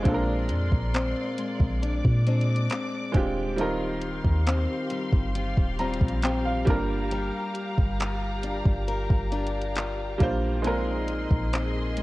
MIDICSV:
0, 0, Header, 1, 6, 480
1, 0, Start_track
1, 0, Tempo, 882353
1, 30, Time_signature, 4, 2, 24, 8
1, 6543, End_track
2, 0, Start_track
2, 0, Title_t, "String section"
2, 0, Program_c, 0, 48
2, 0, Note_on_c, 0, 56, 70
2, 30, Note_on_c, 0, 74, 66
2, 30, Note_on_c, 0, 84, 80
2, 981, Note_off_c, 0, 84, 0
2, 989, Note_on_c, 0, 86, 82
2, 1928, Note_off_c, 0, 56, 0
2, 1931, Note_off_c, 0, 74, 0
2, 1940, Note_off_c, 0, 86, 0
2, 1949, Note_on_c, 0, 67, 73
2, 1949, Note_on_c, 0, 77, 67
2, 1949, Note_on_c, 0, 84, 75
2, 3613, Note_off_c, 0, 84, 0
2, 3631, Note_on_c, 0, 82, 79
2, 5768, Note_off_c, 0, 67, 0
2, 5768, Note_off_c, 0, 77, 0
2, 5769, Note_off_c, 0, 82, 0
2, 5789, Note_on_c, 0, 68, 77
2, 5789, Note_on_c, 0, 75, 67
2, 5789, Note_on_c, 0, 84, 82
2, 6543, Note_off_c, 0, 68, 0
2, 6543, Note_off_c, 0, 75, 0
2, 6543, Note_off_c, 0, 84, 0
2, 6543, End_track
3, 0, Start_track
3, 0, Title_t, "Grand piano"
3, 0, Program_c, 1, 0
3, 0, Control_c, 1, 64, 127
3, 15, Note_on_c, 1, 56, 78
3, 23, Note_on_c, 1, 60, 72
3, 29, Note_on_c, 1, 62, 69
3, 36, Control_c, 1, 64, 0
3, 36, Note_on_c, 1, 65, 71
3, 42, Note_on_c, 1, 69, 69
3, 72, Note_off_c, 1, 69, 0
3, 78, Note_on_c, 1, 70, 83
3, 116, Control_c, 1, 64, 127
3, 770, Note_off_c, 1, 56, 0
3, 774, Note_off_c, 1, 60, 0
3, 777, Note_off_c, 1, 62, 0
3, 781, Note_off_c, 1, 65, 0
3, 802, Note_off_c, 1, 70, 0
3, 1697, Note_on_c, 1, 56, 78
3, 1704, Note_on_c, 1, 60, 75
3, 1711, Note_on_c, 1, 62, 75
3, 1717, Note_on_c, 1, 65, 73
3, 1724, Note_on_c, 1, 67, 88
3, 1891, Note_off_c, 1, 56, 0
3, 1894, Note_off_c, 1, 60, 0
3, 1898, Note_off_c, 1, 62, 0
3, 1901, Note_off_c, 1, 65, 0
3, 1904, Note_off_c, 1, 67, 0
3, 1937, Note_on_c, 1, 55, 77
3, 1944, Note_on_c, 1, 60, 68
3, 1951, Note_on_c, 1, 63, 72
3, 1957, Note_on_c, 1, 65, 70
3, 1959, Control_c, 1, 64, 0
3, 1963, Note_on_c, 1, 70, 85
3, 2040, Control_c, 1, 64, 127
3, 2691, Note_off_c, 1, 55, 0
3, 2695, Note_off_c, 1, 60, 0
3, 2698, Note_off_c, 1, 63, 0
3, 2701, Note_off_c, 1, 65, 0
3, 2704, Note_off_c, 1, 70, 0
3, 3151, Note_on_c, 1, 82, 66
3, 3374, Note_off_c, 1, 82, 0
3, 3390, Note_on_c, 1, 79, 68
3, 3502, Note_off_c, 1, 79, 0
3, 3510, Note_on_c, 1, 77, 71
3, 3618, Note_on_c, 1, 55, 83
3, 3625, Note_on_c, 1, 58, 79
3, 3632, Note_on_c, 1, 62, 77
3, 3637, Control_c, 1, 64, 0
3, 3638, Note_on_c, 1, 65, 79
3, 3645, Note_on_c, 1, 70, 91
3, 3748, Control_c, 1, 64, 127
3, 3849, Note_off_c, 1, 77, 0
3, 4392, Note_off_c, 1, 55, 0
3, 4396, Note_off_c, 1, 58, 0
3, 4399, Note_off_c, 1, 62, 0
3, 4402, Note_off_c, 1, 65, 0
3, 4406, Note_off_c, 1, 70, 0
3, 5537, Note_on_c, 1, 55, 78
3, 5544, Note_on_c, 1, 58, 75
3, 5550, Note_on_c, 1, 62, 77
3, 5557, Note_on_c, 1, 65, 76
3, 5563, Note_on_c, 1, 72, 94
3, 5731, Note_off_c, 1, 55, 0
3, 5734, Note_off_c, 1, 58, 0
3, 5737, Note_off_c, 1, 62, 0
3, 5741, Note_off_c, 1, 65, 0
3, 5744, Note_off_c, 1, 72, 0
3, 5777, Note_on_c, 1, 56, 77
3, 5783, Note_on_c, 1, 60, 76
3, 5791, Note_on_c, 1, 63, 67
3, 5797, Control_c, 1, 64, 0
3, 5798, Note_on_c, 1, 65, 72
3, 5804, Note_on_c, 1, 70, 89
3, 5896, Control_c, 1, 64, 127
3, 6531, Note_off_c, 1, 56, 0
3, 6534, Note_off_c, 1, 60, 0
3, 6538, Note_off_c, 1, 63, 0
3, 6541, Note_off_c, 1, 65, 0
3, 6543, Note_off_c, 1, 70, 0
3, 6543, End_track
4, 0, Start_track
4, 0, Title_t, "Steel-string acoustic guitar"
4, 0, Program_c, 2, 25
4, 0, Note_on_c, 2, 60, 61
4, 0, Note_on_c, 2, 68, 68
4, 30, Note_on_c, 2, 46, 76
4, 33, Note_on_c, 2, 62, 63
4, 508, Note_off_c, 2, 60, 0
4, 510, Note_on_c, 2, 60, 62
4, 751, Note_on_c, 2, 56, 58
4, 984, Note_off_c, 2, 62, 0
4, 991, Note_on_c, 2, 62, 68
4, 1007, Note_off_c, 2, 68, 0
4, 1225, Note_off_c, 2, 56, 0
4, 1231, Note_off_c, 2, 62, 0
4, 1231, Note_on_c, 2, 56, 58
4, 1232, Note_off_c, 2, 60, 0
4, 1234, Note_on_c, 2, 60, 57
4, 1238, Note_on_c, 2, 62, 68
4, 1469, Note_off_c, 2, 60, 0
4, 1471, Note_on_c, 2, 60, 60
4, 1950, Note_off_c, 2, 46, 0
4, 1951, Note_on_c, 2, 51, 75
4, 1952, Note_off_c, 2, 62, 0
4, 1954, Note_on_c, 2, 65, 65
4, 1999, Note_off_c, 2, 56, 0
4, 2430, Note_off_c, 2, 60, 0
4, 2432, Note_on_c, 2, 60, 64
4, 2671, Note_on_c, 2, 55, 62
4, 2909, Note_off_c, 2, 65, 0
4, 2911, Note_on_c, 2, 65, 67
4, 3148, Note_off_c, 2, 60, 0
4, 3149, Note_off_c, 2, 55, 0
4, 3151, Note_on_c, 2, 55, 61
4, 3154, Note_on_c, 2, 60, 62
4, 3156, Note_off_c, 2, 65, 0
4, 3158, Note_on_c, 2, 65, 65
4, 3385, Note_off_c, 2, 60, 0
4, 3391, Note_on_c, 2, 60, 63
4, 3628, Note_off_c, 2, 55, 0
4, 3630, Note_on_c, 2, 55, 80
4, 3679, Note_off_c, 2, 51, 0
4, 3679, Note_off_c, 2, 60, 0
4, 3864, Note_off_c, 2, 55, 0
4, 3871, Note_on_c, 2, 55, 79
4, 3874, Note_on_c, 2, 70, 62
4, 3887, Note_off_c, 2, 65, 0
4, 4350, Note_on_c, 2, 65, 62
4, 4590, Note_on_c, 2, 62, 58
4, 4828, Note_off_c, 2, 70, 0
4, 4831, Note_on_c, 2, 70, 67
4, 5063, Note_off_c, 2, 62, 0
4, 5070, Note_off_c, 2, 65, 0
4, 5070, Note_on_c, 2, 62, 61
4, 5073, Note_on_c, 2, 65, 59
4, 5074, Note_off_c, 2, 70, 0
4, 5076, Note_on_c, 2, 70, 67
4, 5307, Note_off_c, 2, 65, 0
4, 5309, Note_on_c, 2, 65, 63
4, 5789, Note_on_c, 2, 46, 78
4, 5790, Note_off_c, 2, 65, 0
4, 5791, Note_off_c, 2, 55, 0
4, 5792, Note_on_c, 2, 63, 68
4, 5838, Note_off_c, 2, 62, 0
4, 6270, Note_on_c, 2, 60, 60
4, 6286, Note_off_c, 2, 70, 0
4, 6510, Note_on_c, 2, 56, 61
4, 6543, Note_off_c, 2, 46, 0
4, 6543, Note_off_c, 2, 56, 0
4, 6543, Note_off_c, 2, 60, 0
4, 6543, Note_off_c, 2, 63, 0
4, 6543, End_track
5, 0, Start_track
5, 0, Title_t, "808-style bass"
5, 0, Program_c, 3, 38
5, 31, Note_on_c, 3, 34, 99
5, 270, Note_on_c, 3, 41, 97
5, 279, Note_off_c, 3, 34, 0
5, 384, Note_off_c, 3, 41, 0
5, 391, Note_on_c, 3, 34, 99
5, 621, Note_off_c, 3, 34, 0
5, 870, Note_on_c, 3, 34, 98
5, 1101, Note_off_c, 3, 34, 0
5, 1114, Note_on_c, 3, 46, 98
5, 1458, Note_off_c, 3, 46, 0
5, 1711, Note_on_c, 3, 27, 97
5, 2289, Note_off_c, 3, 27, 0
5, 2311, Note_on_c, 3, 39, 98
5, 2541, Note_off_c, 3, 39, 0
5, 2790, Note_on_c, 3, 31, 101
5, 3021, Note_off_c, 3, 31, 0
5, 3032, Note_on_c, 3, 27, 93
5, 3262, Note_off_c, 3, 27, 0
5, 3270, Note_on_c, 3, 34, 99
5, 3616, Note_off_c, 3, 34, 0
5, 3630, Note_on_c, 3, 31, 102
5, 3976, Note_off_c, 3, 31, 0
5, 4231, Note_on_c, 3, 31, 97
5, 4691, Note_off_c, 3, 31, 0
5, 4710, Note_on_c, 3, 31, 95
5, 4941, Note_off_c, 3, 31, 0
5, 4953, Note_on_c, 3, 31, 96
5, 5530, Note_off_c, 3, 31, 0
5, 5551, Note_on_c, 3, 34, 105
5, 6129, Note_off_c, 3, 34, 0
5, 6151, Note_on_c, 3, 34, 91
5, 6543, Note_off_c, 3, 34, 0
5, 6543, End_track
6, 0, Start_track
6, 0, Title_t, "Drums"
6, 30, Note_on_c, 9, 36, 103
6, 30, Note_on_c, 9, 42, 68
6, 84, Note_off_c, 9, 42, 0
6, 85, Note_off_c, 9, 36, 0
6, 266, Note_on_c, 9, 42, 70
6, 321, Note_off_c, 9, 42, 0
6, 391, Note_on_c, 9, 36, 84
6, 445, Note_off_c, 9, 36, 0
6, 512, Note_on_c, 9, 42, 65
6, 519, Note_on_c, 9, 39, 107
6, 567, Note_off_c, 9, 42, 0
6, 573, Note_off_c, 9, 39, 0
6, 750, Note_on_c, 9, 42, 70
6, 805, Note_off_c, 9, 42, 0
6, 870, Note_on_c, 9, 36, 93
6, 924, Note_off_c, 9, 36, 0
6, 995, Note_on_c, 9, 42, 73
6, 1049, Note_off_c, 9, 42, 0
6, 1113, Note_on_c, 9, 36, 90
6, 1167, Note_off_c, 9, 36, 0
6, 1232, Note_on_c, 9, 42, 52
6, 1286, Note_off_c, 9, 42, 0
6, 1311, Note_on_c, 9, 42, 49
6, 1365, Note_off_c, 9, 42, 0
6, 1391, Note_on_c, 9, 42, 48
6, 1445, Note_off_c, 9, 42, 0
6, 1467, Note_on_c, 9, 42, 74
6, 1476, Note_on_c, 9, 39, 104
6, 1521, Note_off_c, 9, 42, 0
6, 1531, Note_off_c, 9, 39, 0
6, 1709, Note_on_c, 9, 42, 60
6, 1710, Note_on_c, 9, 36, 104
6, 1764, Note_off_c, 9, 42, 0
6, 1765, Note_off_c, 9, 36, 0
6, 1948, Note_on_c, 9, 42, 66
6, 2003, Note_off_c, 9, 42, 0
6, 2184, Note_on_c, 9, 42, 68
6, 2239, Note_off_c, 9, 42, 0
6, 2310, Note_on_c, 9, 36, 87
6, 2364, Note_off_c, 9, 36, 0
6, 2431, Note_on_c, 9, 42, 68
6, 2438, Note_on_c, 9, 39, 105
6, 2486, Note_off_c, 9, 42, 0
6, 2492, Note_off_c, 9, 39, 0
6, 2668, Note_on_c, 9, 42, 72
6, 2722, Note_off_c, 9, 42, 0
6, 2789, Note_on_c, 9, 36, 97
6, 2844, Note_off_c, 9, 36, 0
6, 2912, Note_on_c, 9, 42, 72
6, 2966, Note_off_c, 9, 42, 0
6, 3032, Note_on_c, 9, 36, 89
6, 3086, Note_off_c, 9, 36, 0
6, 3149, Note_on_c, 9, 42, 48
6, 3204, Note_off_c, 9, 42, 0
6, 3229, Note_on_c, 9, 42, 52
6, 3269, Note_on_c, 9, 36, 84
6, 3283, Note_off_c, 9, 42, 0
6, 3309, Note_on_c, 9, 42, 49
6, 3323, Note_off_c, 9, 36, 0
6, 3364, Note_off_c, 9, 42, 0
6, 3386, Note_on_c, 9, 42, 71
6, 3395, Note_on_c, 9, 39, 107
6, 3440, Note_off_c, 9, 42, 0
6, 3450, Note_off_c, 9, 39, 0
6, 3629, Note_on_c, 9, 42, 61
6, 3630, Note_on_c, 9, 36, 109
6, 3683, Note_off_c, 9, 42, 0
6, 3684, Note_off_c, 9, 36, 0
6, 3869, Note_on_c, 9, 42, 68
6, 3923, Note_off_c, 9, 42, 0
6, 4105, Note_on_c, 9, 42, 66
6, 4160, Note_off_c, 9, 42, 0
6, 4230, Note_on_c, 9, 36, 83
6, 4285, Note_off_c, 9, 36, 0
6, 4351, Note_on_c, 9, 42, 66
6, 4358, Note_on_c, 9, 39, 109
6, 4406, Note_off_c, 9, 42, 0
6, 4412, Note_off_c, 9, 39, 0
6, 4588, Note_on_c, 9, 42, 72
6, 4642, Note_off_c, 9, 42, 0
6, 4709, Note_on_c, 9, 36, 103
6, 4764, Note_off_c, 9, 36, 0
6, 4833, Note_on_c, 9, 42, 68
6, 4887, Note_off_c, 9, 42, 0
6, 4952, Note_on_c, 9, 36, 94
6, 5006, Note_off_c, 9, 36, 0
6, 5070, Note_on_c, 9, 42, 52
6, 5124, Note_off_c, 9, 42, 0
6, 5150, Note_on_c, 9, 42, 52
6, 5204, Note_off_c, 9, 42, 0
6, 5231, Note_on_c, 9, 42, 49
6, 5285, Note_off_c, 9, 42, 0
6, 5306, Note_on_c, 9, 42, 71
6, 5316, Note_on_c, 9, 39, 101
6, 5361, Note_off_c, 9, 42, 0
6, 5370, Note_off_c, 9, 39, 0
6, 5549, Note_on_c, 9, 42, 61
6, 5550, Note_on_c, 9, 36, 101
6, 5604, Note_off_c, 9, 42, 0
6, 5605, Note_off_c, 9, 36, 0
6, 5789, Note_on_c, 9, 42, 69
6, 5844, Note_off_c, 9, 42, 0
6, 6027, Note_on_c, 9, 42, 67
6, 6081, Note_off_c, 9, 42, 0
6, 6150, Note_on_c, 9, 36, 89
6, 6205, Note_off_c, 9, 36, 0
6, 6272, Note_on_c, 9, 42, 66
6, 6278, Note_on_c, 9, 39, 115
6, 6326, Note_off_c, 9, 42, 0
6, 6333, Note_off_c, 9, 39, 0
6, 6509, Note_on_c, 9, 42, 70
6, 6543, Note_off_c, 9, 42, 0
6, 6543, End_track
0, 0, End_of_file